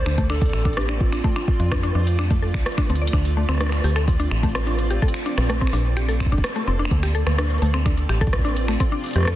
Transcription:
Already playing: C4 F4 C5 D5
0.06 D2 D4, finger snap
0.18 A3, kick, closed hi-hat
0.30 D4 A4, finger snap
0.42 kick, closed hi-hat
0.46 closed hi-hat
0.49 finger snap, closed hi-hat
0.53 A1, closed hi-hat
0.57 closed hi-hat
0.61 D4, closed hi-hat
0.65 kick, closed hi-hat
0.73 D4 G4, cross-stick, closed hi-hat
0.81 closed hi-hat
0.89 D4, finger snap
1.01 F4, kick
1.12 D4, finger snap, closed hi-hat
1.24 A3 D5, kick
1.36 D4, finger snap, closed hi-hat
1.48 kick
1.60 F2, closed hi-hat
1.72 D4, finger snap, kick, cross-stick
1.83 D4, closed hi-hat
1.95 F2 D4
2.07 closed hi-hat
2.19 D4, finger snap
2.31 A3, kick, closed hi-hat
2.42 A4
2.54 C2, finger snap, kick, closed hi-hat
2.60 closed hi-hat
2.66 cross-stick, closed hi-hat
2.72 closed hi-hat
2.78 D4, finger snap, kick, closed hi-hat
2.90 D2 C4, closed hi-hat
2.96 closed hi-hat
3.02 D5
3.07 closed hi-hat
3.13 D2 C4 D4 F4 D5, finger snap, kick, closed hi-hat
3.25 open hi-hat
3.37 A3
3.49 D2 C4, finger snap, cross-stick, closed hi-hat
3.52 cross-stick
3.55 cross-stick
3.58 cross-stick
3.61 D4, cross-stick, closed hi-hat
3.63 cross-stick
3.66 cross-stick
3.69 finger snap, cross-stick, closed hi-hat
3.84 D2 G4, open hi-hat
3.96 A4, finger snap, closed hi-hat
4.08 kick, closed hi-hat
4.20 D4, closed hi-hat
4.31 A1, finger snap, closed hi-hat
4.37 closed hi-hat
4.43 A3, kick, closed hi-hat
4.49 closed hi-hat
4.55 C4, finger snap, cross-stick, closed hi-hat
4.67 D4, closed hi-hat
4.79 closed hi-hat
4.90 G4, closed hi-hat
5.02 A#3 A4 D5, kick
5.08 closed hi-hat
5.14 finger snap, open hi-hat
5.26 D4, closed hi-hat
5.38 A#1, finger snap, cross-stick, closed hi-hat
5.49 A3, cross-stick, closed hi-hat
5.61 C4, kick, closed hi-hat
5.67 finger snap
5.73 A#1 D4, open hi-hat
5.97 G4, finger snap, closed hi-hat
6.09 A4, open hi-hat
6.20 finger snap, kick, closed hi-hat
6.26 kick
6.32 F1 D4, kick, closed hi-hat
6.38 kick
6.44 finger snap, cross-stick, closed hi-hat
6.56 A3, closed hi-hat
6.68 F1 C4
6.79 D4
6.85 finger snap
6.91 D2 C4 F4, kick, closed hi-hat
7.03 G4, finger snap, open hi-hat
7.15 A4, closed hi-hat
7.27 D2, finger snap, cross-stick, closed hi-hat
7.38 D4, cross-stick, closed hi-hat
7.50 closed hi-hat
7.58 D2 A3, closed hi-hat, open hi-hat
7.66 closed hi-hat
7.74 C4, finger snap, closed hi-hat
7.86 D4, finger snap, kick, closed hi-hat
7.98 closed hi-hat
8.09 A1 G4, finger snap, closed hi-hat
8.21 A4, kick, closed hi-hat
8.27 kick
8.33 kick, cross-stick, closed hi-hat
8.39 kick
8.45 D4, closed hi-hat
8.57 closed hi-hat
8.68 A3, finger snap, closed hi-hat
8.80 A3 C4, kick, closed hi-hat
8.92 D4
9.04 closed hi-hat
9.06 closed hi-hat
9.09 closed hi-hat
9.11 closed hi-hat
9.13 F2, cross-stick, closed hi-hat
9.16 G4, cross-stick, closed hi-hat
9.20 cross-stick
9.23 cross-stick
9.25 A4, finger snap, cross-stick
9.28 cross-stick, closed hi-hat

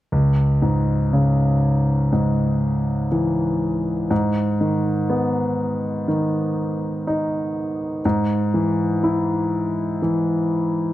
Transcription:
0.12 C#2
0.62 G#2
1.13 C#3
2.12 G#2
3.12 E3
4.11 G#2
4.61 D#3
5.10 B3
6.08 D#3
7.07 D#4
8.05 G#2
8.54 E3
9.03 E4
10.02 E3

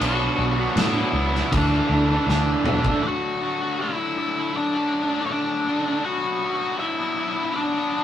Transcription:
0.01 B1 B2 F#3 B3 D4 F#4 F#5, crash
0.20 F#3 B3 D4
0.38 B1 B2 F#3 B3 D4
0.58 F#3 B3 D4
0.76 A2 B2 F#3 B3 D4 E4 E5, snare, crash
0.96 F#3 B3 D4
1.13 C#2 B2 F#3 B3 D4
1.34 F#3 B3 D4, snare
1.52 D2 D3 E3 A3 D4 D5, kick, crash
1.57 D4
1.71 E3 A3 D4
1.89 D2 D3 E3 A3 D4
2.09 E3 A3 D4
2.27 D2 D3 E3 A3 D4 D5, snare
2.64 B2 D3 E3 A3 D4, mid tom
2.84 E3 A3 D4, kick
3.02 D3 F#3 A3 D4
3.07 F#4 F#5
3.40 D3 F#3 A3 D4
3.59 F#3 A3 D4
3.78 D3 F#3 A3 D4 E4 E5
3.97 F#3 A3 D4
4.16 D3 F#3 A3 D4
4.35 F#3 A3 D4
4.56 D4 D5
4.73 F#3 A3 D4
5.09 F#3 A3 D4
5.26 D3 F#3 A3 C#5
5.30 D4 D5
5.66 D3 F#3 A3 D4
5.86 F#3 A3 D4
6.04 B2 F#3 B3 D4 F#4 F#5
6.42 B2 F#3 B3 D4
6.61 F#3 B3 D4
6.80 B2 F#3 B3 D4 E4 E5
6.98 F#3 B3 D4
7.17 B2 F#3 B3 D4
7.36 F#3 B3 D4
7.56 D4 D5
7.73 F#3 B3 D4

